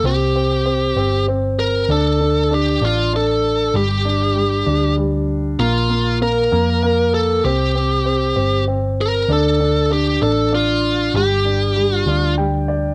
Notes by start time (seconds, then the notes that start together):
0.04 C2 C4 G4
0.36 C4
0.66 C4
0.96 G1 C4
1.28 C4
1.59 A#4
1.88 D2 D4 A4
2.21 D4
2.51 D4 G4
2.81 A1 D4 F4
3.13 D4 A4
3.74 G1 G3 G4
4.05 D4
4.36 G3
4.67 D2 D4
4.98 G3
5.59 A#1 A#3 F4
5.90 A#3
6.21 A#3 A#4
6.52 F2 A#3
6.83 A#3
7.14 A4
7.44 C2 C4 G4
7.75 C4
8.05 C4
8.36 G1 C4
8.68 C4
9.01 A#4
9.28 D2 D4
9.32 A4
9.60 D4
9.91 D4 G4
10.22 A1 D4 A4
10.53 D4 F4
11.14 G1 G3 G4
11.45 D4
11.76 G3
11.97 F4
12.06 D2 D4
12.38 G3 G5
12.68 D5